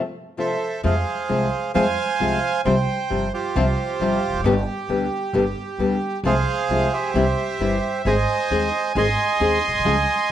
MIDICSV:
0, 0, Header, 1, 4, 480
1, 0, Start_track
1, 0, Key_signature, -4, "minor"
1, 0, Tempo, 451128
1, 895, Time_signature, 4, 2, 24, 8
1, 10977, End_track
2, 0, Start_track
2, 0, Title_t, "Bandoneon"
2, 0, Program_c, 0, 23
2, 418, Note_on_c, 0, 69, 61
2, 418, Note_on_c, 0, 72, 59
2, 421, Note_on_c, 0, 76, 77
2, 865, Note_off_c, 0, 69, 0
2, 866, Note_off_c, 0, 72, 0
2, 867, Note_off_c, 0, 76, 0
2, 904, Note_on_c, 0, 68, 68
2, 904, Note_on_c, 0, 72, 61
2, 915, Note_on_c, 0, 77, 79
2, 1823, Note_off_c, 0, 68, 0
2, 1823, Note_off_c, 0, 72, 0
2, 1828, Note_off_c, 0, 77, 0
2, 1858, Note_on_c, 0, 72, 68
2, 1860, Note_on_c, 0, 77, 71
2, 1865, Note_on_c, 0, 80, 107
2, 2778, Note_off_c, 0, 72, 0
2, 2779, Note_off_c, 0, 77, 0
2, 2781, Note_off_c, 0, 80, 0
2, 2822, Note_on_c, 0, 72, 74
2, 2826, Note_on_c, 0, 79, 92
2, 3499, Note_off_c, 0, 79, 0
2, 3537, Note_off_c, 0, 72, 0
2, 3553, Note_on_c, 0, 67, 63
2, 3553, Note_on_c, 0, 72, 85
2, 3555, Note_on_c, 0, 65, 63
2, 4694, Note_off_c, 0, 72, 0
2, 4695, Note_off_c, 0, 65, 0
2, 6603, Note_off_c, 0, 67, 0
2, 6660, Note_on_c, 0, 68, 77
2, 6660, Note_on_c, 0, 77, 98
2, 6662, Note_on_c, 0, 72, 73
2, 7366, Note_off_c, 0, 72, 0
2, 7376, Note_on_c, 0, 67, 64
2, 7377, Note_on_c, 0, 76, 86
2, 7382, Note_on_c, 0, 72, 63
2, 7388, Note_off_c, 0, 77, 0
2, 7565, Note_off_c, 0, 68, 0
2, 8530, Note_off_c, 0, 67, 0
2, 8533, Note_off_c, 0, 72, 0
2, 8580, Note_on_c, 0, 80, 98
2, 8585, Note_on_c, 0, 72, 75
2, 8585, Note_on_c, 0, 75, 68
2, 8609, Note_off_c, 0, 76, 0
2, 9494, Note_off_c, 0, 72, 0
2, 9494, Note_off_c, 0, 75, 0
2, 9536, Note_off_c, 0, 80, 0
2, 9548, Note_on_c, 0, 84, 111
2, 9550, Note_on_c, 0, 75, 85
2, 9552, Note_on_c, 0, 80, 90
2, 10977, Note_off_c, 0, 75, 0
2, 10977, Note_off_c, 0, 80, 0
2, 10977, Note_off_c, 0, 84, 0
2, 10977, End_track
3, 0, Start_track
3, 0, Title_t, "Nylon-string guitar"
3, 0, Program_c, 1, 24
3, 397, Note_on_c, 1, 48, 56
3, 403, Note_on_c, 1, 53, 52
3, 403, Note_on_c, 1, 57, 57
3, 406, Note_on_c, 1, 60, 51
3, 409, Note_on_c, 1, 65, 68
3, 586, Note_off_c, 1, 48, 0
3, 589, Note_off_c, 1, 53, 0
3, 589, Note_off_c, 1, 57, 0
3, 590, Note_off_c, 1, 60, 0
3, 592, Note_off_c, 1, 65, 0
3, 887, Note_on_c, 1, 56, 78
3, 888, Note_on_c, 1, 48, 84
3, 889, Note_on_c, 1, 53, 95
3, 895, Note_on_c, 1, 65, 80
3, 897, Note_on_c, 1, 60, 93
3, 986, Note_off_c, 1, 56, 0
3, 987, Note_off_c, 1, 48, 0
3, 987, Note_off_c, 1, 53, 0
3, 991, Note_off_c, 1, 65, 0
3, 992, Note_off_c, 1, 60, 0
3, 1367, Note_on_c, 1, 48, 59
3, 1372, Note_on_c, 1, 53, 60
3, 1373, Note_on_c, 1, 56, 64
3, 1376, Note_on_c, 1, 60, 58
3, 1379, Note_on_c, 1, 65, 70
3, 1554, Note_off_c, 1, 48, 0
3, 1556, Note_off_c, 1, 53, 0
3, 1556, Note_off_c, 1, 56, 0
3, 1558, Note_off_c, 1, 60, 0
3, 1560, Note_off_c, 1, 65, 0
3, 1853, Note_on_c, 1, 48, 85
3, 1859, Note_on_c, 1, 53, 89
3, 1861, Note_on_c, 1, 56, 90
3, 1866, Note_on_c, 1, 60, 103
3, 1866, Note_on_c, 1, 65, 100
3, 1952, Note_off_c, 1, 48, 0
3, 1955, Note_off_c, 1, 53, 0
3, 1956, Note_off_c, 1, 56, 0
3, 1959, Note_off_c, 1, 60, 0
3, 1959, Note_off_c, 1, 65, 0
3, 2342, Note_on_c, 1, 48, 63
3, 2342, Note_on_c, 1, 53, 64
3, 2345, Note_on_c, 1, 56, 63
3, 2351, Note_on_c, 1, 60, 74
3, 2351, Note_on_c, 1, 65, 72
3, 2522, Note_off_c, 1, 48, 0
3, 2522, Note_off_c, 1, 53, 0
3, 2523, Note_off_c, 1, 56, 0
3, 2526, Note_off_c, 1, 60, 0
3, 2526, Note_off_c, 1, 65, 0
3, 2819, Note_on_c, 1, 48, 80
3, 2824, Note_on_c, 1, 53, 85
3, 2826, Note_on_c, 1, 55, 97
3, 2832, Note_on_c, 1, 60, 92
3, 2834, Note_on_c, 1, 65, 98
3, 2915, Note_off_c, 1, 48, 0
3, 2918, Note_off_c, 1, 53, 0
3, 2919, Note_off_c, 1, 55, 0
3, 2922, Note_off_c, 1, 60, 0
3, 2923, Note_off_c, 1, 65, 0
3, 3297, Note_on_c, 1, 53, 64
3, 3298, Note_on_c, 1, 48, 60
3, 3304, Note_on_c, 1, 60, 60
3, 3306, Note_on_c, 1, 55, 66
3, 3310, Note_on_c, 1, 65, 66
3, 3477, Note_off_c, 1, 53, 0
3, 3478, Note_off_c, 1, 48, 0
3, 3481, Note_off_c, 1, 60, 0
3, 3482, Note_off_c, 1, 55, 0
3, 3484, Note_off_c, 1, 65, 0
3, 3789, Note_on_c, 1, 48, 89
3, 3790, Note_on_c, 1, 53, 98
3, 3790, Note_on_c, 1, 55, 89
3, 3793, Note_on_c, 1, 60, 100
3, 3795, Note_on_c, 1, 65, 107
3, 3878, Note_off_c, 1, 48, 0
3, 3879, Note_off_c, 1, 53, 0
3, 3879, Note_off_c, 1, 55, 0
3, 3880, Note_off_c, 1, 60, 0
3, 3881, Note_off_c, 1, 65, 0
3, 4261, Note_on_c, 1, 48, 59
3, 4265, Note_on_c, 1, 53, 67
3, 4267, Note_on_c, 1, 55, 77
3, 4272, Note_on_c, 1, 60, 71
3, 4274, Note_on_c, 1, 65, 79
3, 4436, Note_off_c, 1, 48, 0
3, 4437, Note_off_c, 1, 53, 0
3, 4439, Note_off_c, 1, 55, 0
3, 4441, Note_off_c, 1, 60, 0
3, 4442, Note_off_c, 1, 65, 0
3, 4733, Note_on_c, 1, 47, 89
3, 4738, Note_on_c, 1, 50, 99
3, 4739, Note_on_c, 1, 55, 93
3, 4741, Note_on_c, 1, 59, 100
3, 4743, Note_on_c, 1, 67, 91
3, 4825, Note_off_c, 1, 47, 0
3, 4827, Note_off_c, 1, 50, 0
3, 4828, Note_off_c, 1, 55, 0
3, 4829, Note_off_c, 1, 59, 0
3, 4830, Note_off_c, 1, 67, 0
3, 5202, Note_on_c, 1, 47, 62
3, 5204, Note_on_c, 1, 50, 60
3, 5210, Note_on_c, 1, 59, 59
3, 5211, Note_on_c, 1, 55, 69
3, 5211, Note_on_c, 1, 67, 64
3, 5381, Note_off_c, 1, 47, 0
3, 5382, Note_off_c, 1, 50, 0
3, 5385, Note_off_c, 1, 59, 0
3, 5386, Note_off_c, 1, 55, 0
3, 5386, Note_off_c, 1, 67, 0
3, 5681, Note_on_c, 1, 47, 79
3, 5685, Note_on_c, 1, 50, 90
3, 5686, Note_on_c, 1, 55, 87
3, 5691, Note_on_c, 1, 59, 92
3, 5691, Note_on_c, 1, 67, 102
3, 5776, Note_off_c, 1, 47, 0
3, 5778, Note_off_c, 1, 50, 0
3, 5778, Note_off_c, 1, 55, 0
3, 5780, Note_off_c, 1, 59, 0
3, 5780, Note_off_c, 1, 67, 0
3, 6162, Note_on_c, 1, 47, 58
3, 6165, Note_on_c, 1, 50, 69
3, 6171, Note_on_c, 1, 55, 70
3, 6172, Note_on_c, 1, 59, 73
3, 6176, Note_on_c, 1, 67, 65
3, 6340, Note_off_c, 1, 47, 0
3, 6341, Note_off_c, 1, 50, 0
3, 6344, Note_off_c, 1, 55, 0
3, 6345, Note_off_c, 1, 59, 0
3, 6347, Note_off_c, 1, 67, 0
3, 6643, Note_on_c, 1, 48, 80
3, 6650, Note_on_c, 1, 53, 90
3, 6652, Note_on_c, 1, 56, 89
3, 6655, Note_on_c, 1, 60, 94
3, 6657, Note_on_c, 1, 65, 87
3, 6736, Note_off_c, 1, 48, 0
3, 6739, Note_off_c, 1, 53, 0
3, 6740, Note_off_c, 1, 56, 0
3, 6742, Note_off_c, 1, 60, 0
3, 6743, Note_off_c, 1, 65, 0
3, 7128, Note_on_c, 1, 48, 67
3, 7134, Note_on_c, 1, 53, 66
3, 7137, Note_on_c, 1, 56, 60
3, 7137, Note_on_c, 1, 60, 73
3, 7143, Note_on_c, 1, 65, 69
3, 7301, Note_off_c, 1, 48, 0
3, 7304, Note_off_c, 1, 53, 0
3, 7306, Note_off_c, 1, 56, 0
3, 7306, Note_off_c, 1, 60, 0
3, 7309, Note_off_c, 1, 65, 0
3, 7608, Note_on_c, 1, 48, 85
3, 7612, Note_on_c, 1, 52, 77
3, 7614, Note_on_c, 1, 55, 85
3, 7616, Note_on_c, 1, 60, 91
3, 7616, Note_on_c, 1, 64, 96
3, 7698, Note_off_c, 1, 48, 0
3, 7699, Note_off_c, 1, 52, 0
3, 7700, Note_off_c, 1, 55, 0
3, 7702, Note_off_c, 1, 60, 0
3, 7702, Note_off_c, 1, 64, 0
3, 8088, Note_on_c, 1, 48, 63
3, 8090, Note_on_c, 1, 52, 65
3, 8091, Note_on_c, 1, 55, 70
3, 8094, Note_on_c, 1, 60, 68
3, 8099, Note_on_c, 1, 64, 71
3, 8265, Note_off_c, 1, 48, 0
3, 8266, Note_off_c, 1, 52, 0
3, 8267, Note_off_c, 1, 55, 0
3, 8268, Note_off_c, 1, 60, 0
3, 8271, Note_off_c, 1, 64, 0
3, 8574, Note_on_c, 1, 51, 83
3, 8575, Note_on_c, 1, 56, 77
3, 8578, Note_on_c, 1, 60, 85
3, 8579, Note_on_c, 1, 63, 83
3, 8582, Note_on_c, 1, 68, 96
3, 8664, Note_off_c, 1, 51, 0
3, 8665, Note_off_c, 1, 56, 0
3, 8666, Note_off_c, 1, 60, 0
3, 8666, Note_off_c, 1, 63, 0
3, 8668, Note_off_c, 1, 68, 0
3, 9052, Note_on_c, 1, 51, 63
3, 9054, Note_on_c, 1, 60, 67
3, 9055, Note_on_c, 1, 56, 62
3, 9058, Note_on_c, 1, 63, 67
3, 9060, Note_on_c, 1, 68, 68
3, 9228, Note_off_c, 1, 51, 0
3, 9230, Note_off_c, 1, 56, 0
3, 9230, Note_off_c, 1, 60, 0
3, 9232, Note_off_c, 1, 63, 0
3, 9233, Note_off_c, 1, 68, 0
3, 9531, Note_on_c, 1, 51, 84
3, 9532, Note_on_c, 1, 56, 91
3, 9536, Note_on_c, 1, 60, 84
3, 9536, Note_on_c, 1, 63, 93
3, 9541, Note_on_c, 1, 68, 99
3, 9623, Note_off_c, 1, 51, 0
3, 9624, Note_off_c, 1, 56, 0
3, 9625, Note_off_c, 1, 60, 0
3, 9626, Note_off_c, 1, 63, 0
3, 9628, Note_off_c, 1, 68, 0
3, 10002, Note_on_c, 1, 51, 70
3, 10006, Note_on_c, 1, 56, 65
3, 10008, Note_on_c, 1, 60, 67
3, 10013, Note_on_c, 1, 63, 68
3, 10014, Note_on_c, 1, 68, 78
3, 10182, Note_off_c, 1, 51, 0
3, 10184, Note_off_c, 1, 56, 0
3, 10185, Note_off_c, 1, 60, 0
3, 10188, Note_off_c, 1, 63, 0
3, 10188, Note_off_c, 1, 68, 0
3, 10477, Note_on_c, 1, 49, 84
3, 10479, Note_on_c, 1, 53, 88
3, 10480, Note_on_c, 1, 56, 85
3, 10487, Note_on_c, 1, 61, 95
3, 10489, Note_on_c, 1, 65, 90
3, 10575, Note_off_c, 1, 49, 0
3, 10576, Note_off_c, 1, 53, 0
3, 10577, Note_off_c, 1, 56, 0
3, 10580, Note_off_c, 1, 61, 0
3, 10581, Note_off_c, 1, 65, 0
3, 10977, End_track
4, 0, Start_track
4, 0, Title_t, "Upright bass"
4, 0, Program_c, 2, 32
4, 895, Note_on_c, 2, 41, 90
4, 1098, Note_off_c, 2, 41, 0
4, 1380, Note_on_c, 2, 36, 59
4, 1582, Note_off_c, 2, 36, 0
4, 1860, Note_on_c, 2, 41, 88
4, 2062, Note_off_c, 2, 41, 0
4, 2343, Note_on_c, 2, 36, 59
4, 2544, Note_off_c, 2, 36, 0
4, 2823, Note_on_c, 2, 36, 92
4, 3023, Note_off_c, 2, 36, 0
4, 3306, Note_on_c, 2, 31, 57
4, 3504, Note_off_c, 2, 31, 0
4, 3784, Note_on_c, 2, 36, 100
4, 3981, Note_off_c, 2, 36, 0
4, 4253, Note_on_c, 2, 31, 65
4, 4454, Note_off_c, 2, 31, 0
4, 4553, Note_on_c, 2, 28, 54
4, 4605, Note_off_c, 2, 28, 0
4, 4611, Note_on_c, 2, 29, 65
4, 4667, Note_off_c, 2, 29, 0
4, 4673, Note_on_c, 2, 30, 73
4, 4719, Note_off_c, 2, 30, 0
4, 4725, Note_on_c, 2, 31, 105
4, 4926, Note_off_c, 2, 31, 0
4, 5199, Note_on_c, 2, 38, 69
4, 5402, Note_off_c, 2, 38, 0
4, 5675, Note_on_c, 2, 31, 91
4, 5879, Note_off_c, 2, 31, 0
4, 6155, Note_on_c, 2, 38, 61
4, 6358, Note_off_c, 2, 38, 0
4, 6635, Note_on_c, 2, 36, 100
4, 6838, Note_off_c, 2, 36, 0
4, 7114, Note_on_c, 2, 36, 58
4, 7316, Note_off_c, 2, 36, 0
4, 7598, Note_on_c, 2, 36, 89
4, 7800, Note_off_c, 2, 36, 0
4, 8078, Note_on_c, 2, 31, 57
4, 8282, Note_off_c, 2, 31, 0
4, 8566, Note_on_c, 2, 32, 90
4, 8767, Note_off_c, 2, 32, 0
4, 9048, Note_on_c, 2, 39, 61
4, 9248, Note_off_c, 2, 39, 0
4, 9526, Note_on_c, 2, 32, 86
4, 9727, Note_off_c, 2, 32, 0
4, 10003, Note_on_c, 2, 39, 60
4, 10205, Note_off_c, 2, 39, 0
4, 10297, Note_on_c, 2, 34, 53
4, 10351, Note_off_c, 2, 34, 0
4, 10358, Note_on_c, 2, 35, 54
4, 10411, Note_off_c, 2, 35, 0
4, 10418, Note_on_c, 2, 36, 75
4, 10474, Note_off_c, 2, 36, 0
4, 10481, Note_on_c, 2, 37, 85
4, 10683, Note_off_c, 2, 37, 0
4, 10977, End_track
0, 0, End_of_file